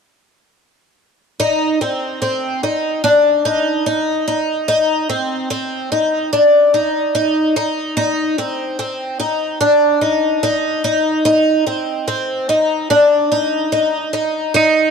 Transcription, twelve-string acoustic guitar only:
1.40 D#4
1.81 C4
2.22 C4
2.63 D#4
3.04 D4
3.45 D#4
3.86 D#4
4.28 D#4
4.68 D#4
5.09 C4
5.50 C4
5.92 D#4
6.33 D4
6.74 D#4
7.15 D#4
7.56 D#4
7.97 D#4
8.38 C4
8.79 C4
9.20 D#4
9.61 D4
10.01 D#4
10.43 D#4
10.84 D#4
11.25 D#4
11.67 C4
12.08 C4
12.49 D#4
12.90 D4
13.32 D#4
13.72 D#4
14.13 D#4
14.54 D#4

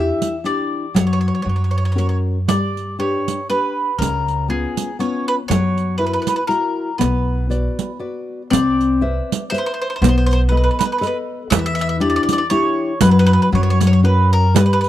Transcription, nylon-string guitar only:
Already playing: D4 E4 G4
0.44 D4 E4 G4
0.94 F#3
1.45 F#3
1.95 C#4 F#4 A#4
2.48 G3
2.99 D4 G4 B4
3.49 D4 G4 B4
4.00 C#3
4.48 B3 C#4 F4
4.99 B3 C#4 F4
5.49 F#3
5.99 E4 F#4 A#4
6.49 E4 F#4 A#4
6.99 B3
7.50 F#4 B4 D5
7.99 F#4 B4 D5
8.51 C4
9.01 B4 C5 E5
9.52 B4 C5 E5
10.02 B3
10.51 A4 B4 D#5
11.01 A4 B4 D#5
11.51 E3
12.00 D4 E4 G4
12.51 D4 E4 G4
13.01 F#3
13.52 F#3
14.03 C#4 F#4 A#4
14.54 G3

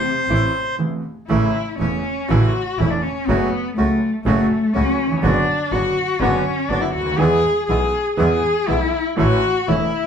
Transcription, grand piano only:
0.30 A1 A2 C3 E3 A3 E4
0.79 E1 E2 C3 E3 A3 E4
1.29 A1 A2 C#3 E3 A3 E4
1.79 E1 E2 C#3 E3 A3 E4
2.30 A1 A2 C#3 E3 A3 E4
2.80 E1 E2 C#3 E3 A3 E4
3.29 F#2 C#3 F#3 A3 F#4
3.78 C#2 C#3 F#3 A3 F#4
4.26 F#2 C#3 F#3 A3 F#4
4.75 C#2 C#3 F#3 A3 F#4
5.06 D#2
5.12 E2
5.17 F2
5.23 F#2 D3 F#3 B3 F#4
5.72 F#2 D3 F#3 B3 F#4
6.21 F#2 D3 F#3 B3 F#4
6.70 F#2 D3 F#3 B3 F#4
7.00 C#2
7.06 D2
7.12 D#2
7.18 E2 E3 G#3 B3 G#4
7.69 B1 B2 E3 G#3 B3 G#4
8.17 E2 E3 G#3 B3 G#4
8.68 B1 B2 E3 G#3 B3 G#4
9.17 A1 A2 E3 A3 C#4 A4
9.68 E1 E2 E3 A3 C#4 A4

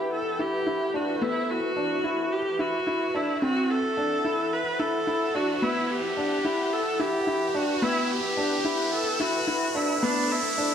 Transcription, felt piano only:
Already playing: E4
0.39 E4
0.67 E4
0.94 D4
1.21 B3
1.76 D4
2.04 E4
2.59 E4
2.87 E4
3.14 D4
3.42 C4
3.97 D4
4.25 E4
4.79 E4
5.07 E4
5.35 D4
5.62 B3
6.17 D4
6.45 E4
6.99 E4
7.27 E4
7.55 D4
7.82 B3
8.37 D4
8.65 E4
9.20 E4
9.47 E4
9.75 D4
10.03 B3
10.58 D4

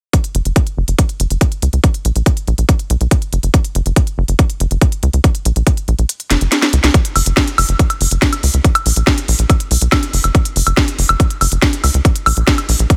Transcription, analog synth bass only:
0.35 F#1
0.45 F#1
0.77 F#1
0.88 F#1
1.20 F#1
1.30 F#1
1.62 C#2
1.73 C#2
2.05 A#1
2.16 A#1
2.47 A#1
2.58 A#1
2.90 B1
3.01 B1
3.33 F#1
3.43 F#1
3.75 F#1
3.86 F#1
4.18 F#1
4.28 F#1
4.60 F#1
4.71 F#1
5.03 C#2
5.13 C#2
5.45 A#1
5.56 A#1
5.88 A#1
5.99 A#1
6.30 F#1
6.41 F#1
6.73 C#2
6.84 C#2
7.16 F#1
7.26 F#1
7.58 F#1
7.69 F#1
8.01 F#1
8.11 F#1
8.43 C#2
8.54 C#2
8.86 A#1
8.96 A#1
9.28 A#1
9.39 A#1
9.71 B1
9.81 B1
10.13 F#1
10.24 F#1
10.56 F#1
10.67 F#1
10.99 F#1
11.09 F#1
11.41 F#1
11.52 F#1
11.84 C#2
11.94 C#2
12.26 A#1
12.37 A#1
12.69 A#1
12.79 A#1

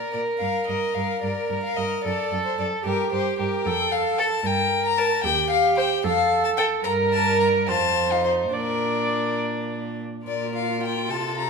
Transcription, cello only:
0.14 A#2
0.41 G2
0.69 G2
0.96 G2
1.23 G2
1.50 G2
1.78 G2
2.05 F#2
2.32 F#2
2.59 F#2
2.86 G2
3.12 G2
3.40 G2
3.66 F2
4.44 G2
5.24 D#2
6.04 F2
6.84 G2
7.68 F2
8.53 A#2
10.25 A#2
11.08 C3

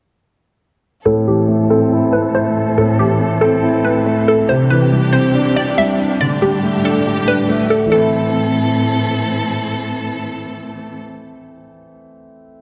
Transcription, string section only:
1.06 A2 E3 C4 A4
4.49 C3 D4 G4
6.20 A2 G3 G4
7.92 A2 E3 C4 A4

